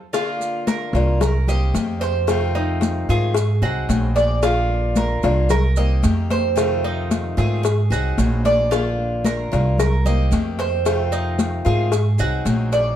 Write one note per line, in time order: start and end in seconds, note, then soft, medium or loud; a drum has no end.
0.13 0.93 D3 medium
0.13 0.93 A#3 medium
0.13 0.93 D4 medium
0.13 0.65 F4 medium
0.13 0.93 F4 medium
0.13 cowbell loud
0.13 high conga soft
0.13 maracas medium
0.40 high conga soft
0.40 maracas medium
0.67 1.19 A#4 medium
0.67 cowbell medium
0.67 high conga loud
0.67 maracas medium
0.93 1.70 C2 loud
0.93 1.21 A#3 medium
0.93 1.20 D4 medium
0.93 1.20 F4 medium
0.93 cowbell medium
0.93 high conga soft
0.93 maracas soft
1.21 1.47 A#4 medium
1.21 muted steel-string acoustic guitar stroke medium
1.21 cowbell loud
1.21 high conga soft
1.21 low conga medium
1.21 maracas medium
1.47 1.74 D#3 medium
1.47 1.74 A#3 medium
1.47 1.74 C4 medium
1.47 1.74 G4 medium
1.47 2.00 D#5 medium
1.47 high conga soft
1.47 low conga medium
1.47 maracas medium
1.74 3.02 F2 loud
1.74 2.27 D#3 medium
1.74 2.28 A#3 medium
1.74 2.28 C4 medium
1.74 2.28 G4 medium
1.74 cowbell medium
1.74 high conga medium
1.74 maracas medium
2.01 2.53 C5 medium
2.01 cowbell medium
2.01 maracas soft
2.27 3.07 C3 medium
2.27 3.07 D#3 medium
2.27 3.08 A3 medium
2.27 3.08 C4 medium
2.27 3.08 F4 medium
2.27 cowbell loud
2.27 high conga soft
2.27 maracas medium
2.55 3.07 D#4 medium
2.55 high conga soft
2.81 cowbell medium
2.81 high conga medium
2.81 maracas medium
3.09 3.59 G#2 loud
3.09 3.35 D#3 medium
3.09 3.35 A3 medium
3.09 3.35 C4 medium
3.09 3.35 F4 medium
3.09 3.61 G#4 medium
3.09 high conga soft
3.09 maracas soft
3.35 muted steel-string acoustic guitar stroke medium
3.35 cowbell loud
3.35 high conga soft
3.35 maracas medium
3.62 3.87 C2 medium
3.62 3.88 F#3 medium
3.62 3.88 C4 medium
3.62 3.88 D#4 medium
3.62 4.15 F#4 medium
3.62 3.88 G#4 medium
3.62 high conga soft
3.89 5.17 A#1 loud
3.89 4.42 F#3 medium
3.89 4.42 C4 medium
3.89 4.42 D#4 medium
3.89 4.42 G#4 medium
3.89 cowbell medium
3.89 high conga medium
3.89 maracas medium
4.16 4.42 D5 medium
4.16 cowbell medium
4.16 maracas soft
4.43 5.22 D3 medium
4.43 5.23 A#3 medium
4.43 5.23 D4 medium
4.43 4.95 F4 medium
4.43 5.22 F4 medium
4.43 cowbell loud
4.43 high conga soft
4.43 maracas medium
4.69 high conga soft
4.96 5.49 A#4 medium
4.96 cowbell medium
4.96 high conga loud
4.96 maracas medium
5.23 6.00 C2 loud
5.23 5.49 A#3 medium
5.23 5.50 D4 medium
5.23 5.49 F4 medium
5.23 cowbell medium
5.23 high conga soft
5.23 maracas soft
5.49 5.76 A#4 medium
5.49 muted steel-string acoustic guitar stroke medium
5.49 cowbell loud
5.49 high conga soft
5.49 low conga medium
5.49 maracas medium
5.76 6.01 D#3 medium
5.76 6.02 A#3 medium
5.76 6.03 C4 medium
5.76 6.03 G4 medium
5.76 6.29 D#5 medium
5.76 high conga soft
5.76 maracas medium
6.03 7.31 F2 medium
6.03 6.55 D#3 medium
6.03 6.56 A#3 medium
6.03 6.56 C4 medium
6.03 6.57 G4 medium
6.03 cowbell medium
6.03 high conga medium
6.03 maracas medium
6.30 6.83 C5 medium
6.30 cowbell medium
6.30 high conga medium
6.30 maracas soft
6.56 7.36 C3 medium
6.56 7.36 D#3 medium
6.56 7.36 A3 medium
6.56 7.36 C4 medium
6.56 7.36 F4 medium
6.56 cowbell loud
6.56 high conga soft
6.56 maracas medium
6.84 7.36 D#4 medium
6.84 high conga soft
7.11 cowbell medium
7.11 high conga loud
7.11 maracas medium
7.37 7.87 G#2 medium
7.37 7.62 D#3 medium
7.37 7.63 A3 medium
7.37 7.62 C4 medium
7.37 7.63 F4 medium
7.37 7.90 G#4 medium
7.37 high conga soft
7.37 maracas soft
7.63 muted steel-string acoustic guitar stroke medium
7.63 cowbell loud
7.63 high conga soft
7.63 maracas medium
7.90 8.16 C2 medium
7.90 8.17 F#3 medium
7.90 8.17 C4 medium
7.90 8.17 D#4 medium
7.90 8.43 F#4 medium
7.90 8.17 G#4 medium
7.90 high conga soft
7.90 maracas medium
8.18 9.45 A#1 medium
8.18 8.71 F#3 soft
8.18 8.71 C4 medium
8.18 8.71 D#4 medium
8.18 8.71 G#4 medium
8.18 cowbell medium
8.18 high conga medium
8.18 maracas medium
8.45 8.71 D5 medium
8.45 cowbell medium
8.45 high conga medium
8.45 maracas soft
8.71 9.51 D3 medium
8.71 9.51 A#3 medium
8.71 9.51 D4 medium
8.71 9.23 F4 medium
8.71 9.50 F4 medium
8.71 cowbell loud
8.71 high conga soft
8.71 maracas medium
8.98 high conga soft
9.24 9.77 A#4 medium
9.24 cowbell medium
9.24 high conga loud
9.24 maracas medium
9.52 10.28 C2 loud
9.52 9.78 A#3 medium
9.52 9.78 D4 medium
9.52 9.77 F4 medium
9.52 cowbell medium
9.52 high conga soft
9.52 maracas soft
9.78 10.05 A#4 medium
9.78 muted steel-string acoustic guitar stroke medium
9.78 cowbell loud
9.78 high conga soft
9.78 low conga medium
9.78 maracas medium
10.05 10.30 D#3 soft
10.05 10.30 A#3 medium
10.05 10.30 C4 medium
10.05 10.31 G4 medium
10.05 10.57 D#5 medium
10.05 high conga soft
10.05 low conga medium
10.05 maracas medium
10.31 11.59 F2 loud
10.31 10.84 D#3 medium
10.31 10.84 A#3 medium
10.31 10.84 C4 medium
10.31 10.85 G4 medium
10.31 cowbell medium
10.31 high conga medium
10.31 maracas medium
10.59 11.11 C5 medium
10.59 cowbell medium
10.59 maracas soft
10.85 11.64 C3 medium
10.85 11.65 D#3 medium
10.85 11.65 A3 medium
10.85 11.65 C4 medium
10.85 11.64 F4 medium
10.85 cowbell loud
10.85 high conga soft
10.85 maracas medium
11.12 11.64 D#4 medium
11.12 high conga soft
11.12 maracas medium
11.39 cowbell medium
11.39 high conga loud
11.39 maracas medium
11.65 12.15 G#2 medium
11.65 11.91 D#3 medium
11.65 11.91 A3 medium
11.65 11.91 C4 medium
11.65 11.91 F4 medium
11.65 12.18 G#4 medium
11.65 high conga soft
11.65 maracas soft
11.92 muted steel-string acoustic guitar stroke medium
11.92 cowbell loud
11.92 high conga soft
11.92 maracas medium
12.18 12.44 C2 medium
12.18 12.44 F#3 medium
12.18 12.44 C4 medium
12.18 12.45 D#4 medium
12.18 12.71 F#4 medium
12.18 12.44 G#4 medium
12.18 high conga soft
12.18 maracas medium
12.45 12.96 A#1 medium
12.45 12.96 F#3 medium
12.45 12.96 C4 medium
12.45 12.96 D#4 medium
12.45 12.96 G#4 medium
12.45 cowbell medium
12.45 high conga medium
12.45 maracas medium
12.73 12.96 D5 medium
12.73 cowbell medium
12.73 maracas soft